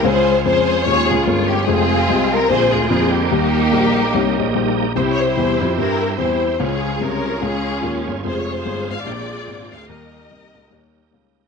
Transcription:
0.03 grand piano C#2, tine electric piano C#3 G#3 C#4 F4 G#4 C#5, tonewheel organ G#3 C#4 F4, string section C5
0.07 string section F4 G#4
0.45 grand piano F2, tine electric piano G#3 C#4 F4 G#4 C#5, string section F4 G#4 C5
0.85 grand piano D#2, tine electric piano G#3 C#4 F4 G#4 C#5, string section F4 G#4 C#5
1.09 grand piano C#2, string section G#4
1.26 grand piano G1, tine electric piano G#3 C#4 F4 G#4 A#4, string section F4
1.49 string section G4
1.67 grand piano F1, tine electric piano G#3 C4 F4 G#4 C5, tonewheel organ G#3 C4 F4, string section C4 F4 G#4
2.08 grand piano C2, tine electric piano G#3 C4 F4 G#4 D#5
2.32 string section A#4
2.49 grand piano A#1, tine electric piano A#2 A#3 C4 D4 G4 G#4, tonewheel organ D3 G#3 A#3 C4 F4, string section F4 G#4 C5
2.57 tonewheel organ G5
2.73 grand piano D2, string section G#4
2.90 grand piano F2, tine electric piano A#3 C4 D4 G4 G#4, string section G#4
3.14 string section A#3 D#4 G4
3.31 grand piano D#2, tine electric piano D#3 G3 A#3 D#4 G4 A#4, tonewheel organ A#3 D#4 G4
3.72 grand piano A#1, tine electric piano G3 A#3 D#4 G4 A#4
4.14 grand piano C2, tine electric piano G3 A#3 D#4 G4 C#5
4.39 grand piano A#1, tine electric piano D#5
4.55 grand piano A#1, tine electric piano G3 A#3 D#4 G4 C5 G5
4.80 tine electric piano A#5
4.95 grand piano C2, tine electric piano C3 G3 C4 E4 G4 C5, tonewheel organ C4 E4 G4, string section E4 G4 C5
5.12 string section C#5
5.24 string section E4 G4 C5
5.36 grand piano E2, tine electric piano G3 C4 E4 G4 C5
5.61 grand piano F2
5.78 grand piano G2, tine electric piano G3 C4 E4 G4 C5, string section E4 G4 A#4
6.18 grand piano E2, tine electric piano G3 C4 E4 G4 C5, string section E4 G4 C5
6.59 grand piano C#2, tine electric piano C#3 G#3 C#4 F4 G#4 C#5, string section C#4 F4 G#4, tonewheel organ C#4 F4 G4
6.65 tonewheel organ G#4
6.99 grand piano C2, tine electric piano G#3 C#4 F4 G#4 C5, string section C#4 F4 A#4
7.41 grand piano C#2, tine electric piano G#3 C#4 F4 G#4 C#5, string section C#4 F4 G#4
7.82 grand piano D#2, tine electric piano G#3 C#4 F4 G#4 A#4
8.07 grand piano G1
8.23 grand piano F1, tine electric piano G#3 C4 F4 G#4 C5, tonewheel organ C4 F4 G#4, string section F4 G#4 C5
8.40 string section C#5
8.53 string section F4 G#4 C5
8.65 grand piano G1, tine electric piano G#3 C4 F4 G#4 C5
8.90 grand piano G#1, string section F5
9.05 grand piano A#1, tine electric piano A#2 A#3 C4 D4 G4 G#4, tonewheel organ G#3 C4 D4 A#4 G5, string section F4 G#4 D5
9.48 grand piano G#1, tine electric piano A#3 C4 D4 G4 G#4
9.72 grand piano D2, string section F5
9.87 grand piano D#2, tine electric piano D#3 G3 A#3 D#4 G4 A#4, tonewheel organ D#4 G4 A#4, string section G4 A#4
9.91 string section D#5
10.30 grand piano C2, tine electric piano G3 A#3 D#4 G4 A#4
10.54 grand piano C#2
10.71 grand piano D#2, tine electric piano G3 A#3 D#4 G4 C#5
11.11 grand piano C#2, tine electric piano G3 A#3 D#4 G4 C#5

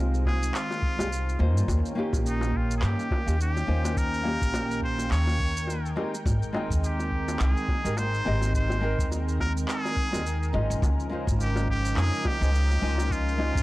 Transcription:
Already playing: upright bass C2, analog synth pad D#3 G#3 C4 F4, nylon-string guitar G#3 C4 D#4 F4 G4
0.14 shaker
0.25 muted trumpet G#4, kick, high bongo
0.43 shaker
0.54 muted trumpet F4, clap, shaker
0.71 high bongo, shaker
0.82 kick
0.98 upright bass C2, nylon-string guitar G#3 C4 D#4 F4 G4, high bongo, shaker
1.13 shaker
1.29 shaker
1.39 upright bass D#2, nylon-string guitar A#3 C#4 D#4 F4 C5, analog synth pad A#3 C#4 G5, high bongo
1.56 upright bass G2, shaker
1.68 upright bass D#2, kick, high bongo, shaker
1.86 shaker
1.95 nylon-string guitar A#3 C#4 D#4 F4 G4
2.13 upright bass A#1, kick, high bongo, shaker
2.26 muted trumpet D#4, shaker
2.41 high bongo, shaker
2.54 muted trumpet F4, kick
2.71 shaker
2.78 muted trumpet G#4
2.82 upright bass G2, muted trumpet G4, clap, high bongo, shaker
2.99 shaker
3.11 kick, high bongo
3.26 upright bass D#2, nylon-string guitar A#3 C#4 D#4 F4 G4, shaker
3.41 muted trumpet G4, shaker
3.57 high bongo, shaker
3.67 upright bass D#2, nylon-string guitar A#3 C#4 D#4 F4 C5, analog synth pad A#4
3.85 high bongo, shaker
3.96 muted trumpet A#4, kick, shaker
4.14 shaker
4.23 nylon-string guitar A#3 C#4 D#4 F4 G4, high bongo
4.41 upright bass A#1, kick, shaker
4.54 high bongo, shaker
4.71 shaker
4.82 muted trumpet C5, kick
4.98 high bongo, shaker
5.11 upright bass D#2, muted trumpet C#5, clap, shaker
5.27 high bongo, shaker
5.39 kick
5.57 shaker
5.67 high bongo, shaker
5.86 shaker
5.96 analog synth pad D#3 G#3, nylon-string guitar G#3 C4 D#4 G4 A#4, high bongo
6.14 shaker
6.25 upright bass G#1, kick, high bongo, shaker
6.42 shaker
6.53 nylon-string guitar G#3 C4 D#4 A#4 G5, high bongo
6.70 upright bass D#2, kick, shaker
6.84 muted trumpet G4, shaker
6.99 high bongo, shaker
7.11 kick
7.28 high bongo, shaker
7.39 upright bass C2, muted trumpet G#4, clap, shaker
7.57 shaker
7.68 kick, high bongo
7.84 upright bass G#1, nylon-string guitar G#3 C4 D#4 G4 A#4, shaker
7.97 muted trumpet C5, high bongo, shaker
8.14 shaker
8.25 upright bass G#1, nylon-string guitar G#3 C4 D#4 G4 D#5
8.42 high bongo, shaker
8.54 muted trumpet C5, kick, shaker
8.70 high bongo, shaker
8.80 nylon-string guitar G#3 C4 D#4 A#4 G5
8.99 upright bass D#2, kick, shaker
9.12 high bongo, shaker
9.29 shaker
9.39 muted trumpet A#4, kick, high bongo
9.57 shaker
9.68 muted trumpet G#4, clap, shaker
9.85 high bongo, shaker
9.97 kick
10.12 upright bass D#2, nylon-string guitar G#3 C4 D#4 G4 A#4, high bongo, shaker
10.26 shaker
10.43 shaker
10.53 upright bass G#1, nylon-string guitar G#3 C#4 D#4 F4 D#5, high bongo
10.70 upright bass C2, shaker
10.82 upright bass C#2, analog synth pad C#3 F3 D#4, kick, high bongo, shaker
11.00 shaker
11.09 nylon-string guitar G#3 C#4 D#4 F4 C5
11.27 upright bass G#1, kick, high bongo, shaker
11.40 muted trumpet G4, shaker
11.56 high bongo, shaker
11.68 muted trumpet G4, kick
11.85 shaker
11.96 upright bass F2, muted trumpet G#4, clap, high bongo, shaker
12.14 shaker
12.25 muted trumpet G4, kick, high bongo
12.41 upright bass C#2, nylon-string guitar G#3 C#4 D#4 F4 C5, shaker
12.55 shaker
12.70 high bongo, shaker
12.81 upright bass C#2, nylon-string guitar G#3 C#4 D#4 F4 D#5
12.98 high bongo, shaker
13.10 muted trumpet F4, kick, shaker
13.29 shaker
13.37 nylon-string guitar G#3 C#4 D#4 F4 C5, high bongo
13.55 upright bass G#1, kick, shaker

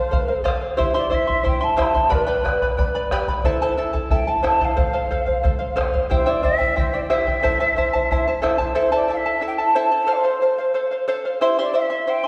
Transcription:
Already playing: charango C5 F5, quena C5
0.11 charango A4 C5 F5, bombo low
0.28 charango C5 F5
0.44 charango A4 C5 F5, bombo rim, bombo low
0.61 charango C5 F5
0.77 charango E4 G4 C5 E5 C6, quena C5, bombo low
0.94 charango E4 G4 C5 E5 C6, quena D5
1.10 charango E4 C5 E5 C6, quena E5, bombo low
1.27 charango E4 E5 C6, bombo low
1.43 charango E4 C5 E5 C6, quena G5, bombo low
1.61 charango E4 E5 C6, quena A5
1.76 charango E4 G4 C5 E5 C6, quena B5, bombo rim, bombo low
1.84 quena A5
1.94 charango E4 E5 C6, bombo low
2.09 charango G4 B4 D5 G5 B5, quena B4, bombo low
2.27 charango G4 B4 D5 G5 B5
2.44 charango B4 D5 G5 B5, bombo rim, bombo low
2.62 charango B4 D5 B5, bombo low
2.77 charango B4 D5 G5 B5, bombo low
2.95 charango B4 D5 B5
3.11 charango G4 B4 D5 G5 B5, bombo rim, bombo low
3.27 charango B4 D5 B5, bombo low
3.44 charango E4 A4 C5 E5 A5, bombo low
3.62 charango E4 A4 C5 E5 A5
3.77 charango E4 A4 E5 A5
3.93 charango E4 A4 A5, bombo low
4.10 charango E4 A4 E5 A5, quena G5, bombo low
4.27 charango E4 A4 A5, quena A5
4.43 charango E4 A4 C5 E5 A5, quena A5, bombo rim, bombo low
4.61 charango E4 A4 A5, quena F5, bombo low
4.76 charango A4 C5 F5, bombo low
4.93 charango A4 C5 F5
5.11 charango A4 C5 F5, bombo low
5.26 charango C5 F5, bombo low
5.43 charango A4 C5 F5, bombo low
5.59 charango C5 F5
5.76 charango A4 C5 F5, bombo rim, bombo low
5.93 charango C5 F5, bombo low
6.10 charango E4 G4 C5 E5 G5, quena C5, bombo low
6.26 charango E4 G4 C5 E5 G5, quena D5
6.43 charango E4 C5 E5 G5, quena E5, bombo low
6.59 charango E4 C5 G5, bombo low
6.76 charango E4 C5 E5 G5, quena C5, bombo low
6.94 charango E4 C5 G5, quena D5
7.10 charango E4 G4 C5 E5 G5, quena E5, bombo rim
7.27 charango E4 C5 G5, bombo low
7.43 charango E4 A4 C5 E5 A5, bombo low
7.60 charango E4 A4 C5 E5 A5
7.76 charango E4 C5 E5 A5, bombo low
7.93 charango E4 C5 A5, bombo low
8.11 charango E4 C5 E5 A5, bombo low
8.27 charango E4 C5 A5
8.42 charango E4 A4 C5 E5 A5, bombo rim, bombo low
8.58 charango E4 C5 A5, bombo low
8.75 charango E4 A4 C5 E5 A5, quena C5
8.92 charango E4 A4 C5 E5 A5, quena D5
9.08 charango E4 A4 E5 A5
9.12 quena F5
9.17 quena E5
9.26 charango E4 A4 A5
9.41 charango E4 A4 E5 A5
9.47 quena G5
9.58 charango E4 A4 A5
9.64 quena A5
9.75 charango E4 A4 C5 E5 A5
9.80 quena A5
9.91 charango E4 A4 A5
10.06 charango A4 C5 F5
10.12 quena C5 D5
10.24 charango A4 C5 F5
10.41 charango A4 C5 F5
10.58 charango C5 F5
10.74 charango A4 C5 F5
10.91 charango C5 F5
11.08 charango A4 C5 F5
11.25 charango C5 F5
11.41 charango E4 G4 C5 E5 C6, quena C5
11.59 charango E4 G4 C5 E5 C6, quena D5
11.74 charango E4 C5 E5 C6, quena F5
11.81 quena E5
11.90 charango E4 E5 C6
12.07 charango E4 C5 E5 C6, quena G5
12.23 charango E5 C6

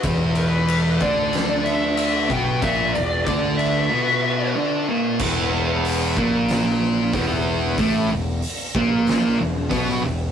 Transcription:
0.03 fingered electric bass E1, distorted electric guitar E2 E3, kick, ride
0.35 lead electric guitar B4, ride
0.68 ride
1.00 fingered electric bass D2, distorted electric guitar D3 D4, lead electric guitar D5, kick, ride
1.33 snare, ride
1.64 lead electric guitar E5, ride
1.97 lead electric guitar E5, ride
2.29 fingered electric bass B1, distorted electric guitar B2 B3, lead electric guitar G5, kick, ride
2.62 fingered electric bass A#1, distorted electric guitar A#2 A#3, lead electric guitar E5, kick, ride
2.93 fingered electric bass E1, distorted electric guitar E2, lead electric guitar D5, ride
3.25 fingered electric bass D2, distorted electric guitar D3 D4, lead electric guitar D5, kick, ride
3.57 lead electric guitar E5, ride
3.91 distorted electric guitar B2 B3
4.56 distorted electric guitar D3 D4
4.89 distorted electric guitar A#2 A#3
5.19 fingered electric bass E1, distorted electric guitar E2 E3, kick, crash
5.85 open hi-hat
6.17 fingered electric bass A#1, distorted electric guitar A#2 A#3, kick
6.48 snare, open hi-hat
7.13 fingered electric bass E1, distorted electric guitar E2 E3, kick, open hi-hat
7.78 fingered electric bass A1, distorted electric guitar A2 A3, kick, open hi-hat
8.11 fingered electric bass E1, distorted electric guitar E2
8.42 open hi-hat
8.75 fingered electric bass A#1, distorted electric guitar A#2 A#3, kick
9.07 snare, open hi-hat
9.39 fingered electric bass E1, distorted electric guitar E2
9.70 fingered electric bass B1, distorted electric guitar B2 B3, kick, open hi-hat
9.90 snare
10.03 fingered electric bass E1, distorted electric guitar E2

